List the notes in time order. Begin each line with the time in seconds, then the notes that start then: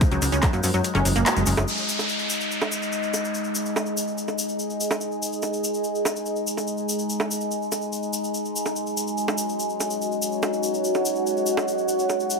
Already playing: G#3 D#4
0.01 F3, kick, closed hi-hat, shaker
0.11 C#2 F#3, closed hi-hat, shaker
0.22 C#2 F#3, open hi-hat, shaker
0.32 C#2 C#4, closed hi-hat, shaker
0.42 F#3, kick, clap, closed hi-hat, high bongo, shaker
0.53 F#2 A#3, closed hi-hat, shaker
0.63 F#2 F3, open hi-hat, shaker
0.74 F#2 F#3, closed hi-hat, shaker
0.84 F#3, closed hi-hat, shaker
0.95 F#1 C#4, clap, closed hi-hat, high bongo, shaker
1.05 F#1 F3, open hi-hat, shaker
1.16 F#1 A#3, closed hi-hat, shaker
1.26 F#4, clap, closed hi-hat, shaker
1.37 F#1 G#3, closed hi-hat, shaker
1.46 F#1 C#4, open hi-hat, shaker
1.57 F#1 F#3, closed hi-hat, high bongo, shaker
1.68 G#3 D#4 G#4, downlifter, shaker
1.78 shaker
1.89 shaker
1.99 high bongo, shaker
2.09 shaker
2.19 shaker
2.30 shaker
2.35 G#5
2.40 shaker
2.46 D#5
2.51 shaker
2.61 high bongo, shaker
2.72 shaker
2.82 shaker
2.92 shaker
3.03 shaker
3.14 high bongo, shaker
3.25 shaker
3.34 shaker
3.44 shaker
3.55 shaker
3.66 shaker
3.76 high bongo, shaker
3.86 shaker
3.97 shaker
4.07 shaker
4.18 shaker
4.28 high bongo, shaker
4.38 shaker
4.49 shaker
4.59 shaker
4.70 shaker
4.81 shaker
4.91 high bongo, shaker
5.01 shaker
5.12 shaker
5.22 shaker
5.33 shaker
5.42 high bongo, shaker
5.53 shaker
5.64 shaker
5.74 shaker
5.84 shaker
5.95 shaker
6.05 high bongo, shaker
6.16 shaker
6.26 shaker
6.36 shaker
6.47 shaker
6.57 high bongo, shaker
6.67 shaker
6.77 shaker
6.89 shaker
6.99 shaker
7.10 shaker
7.20 high bongo, shaker
7.31 shaker
7.41 shaker
7.51 shaker
7.62 shaker
7.72 high bongo, shaker
7.81 shaker
7.93 shaker
8.03 shaker
8.13 shaker
8.24 shaker
8.34 F#4, shaker
8.45 shaker
8.56 shaker
8.65 C#5, high bongo, shaker
8.76 shaker
8.87 shaker
8.97 shaker
9.07 shaker
9.18 shaker
9.28 high bongo, shaker
9.38 shaker
9.46 F#5, shaker
9.59 shaker
9.70 shaker
9.80 high bongo, shaker
9.90 shaker
10.02 shaker
10.12 shaker
10.22 shaker
10.32 shaker
10.43 high bongo, shaker
10.53 shaker
10.63 shaker
10.74 shaker
10.84 shaker
10.94 high bongo, shaker
11.05 shaker
11.15 shaker
11.27 shaker
11.37 shaker
11.46 shaker
11.57 high bongo, shaker
11.68 shaker
11.78 shaker
11.88 shaker
11.99 shaker
12.09 high bongo, shaker
12.20 shaker
12.30 shaker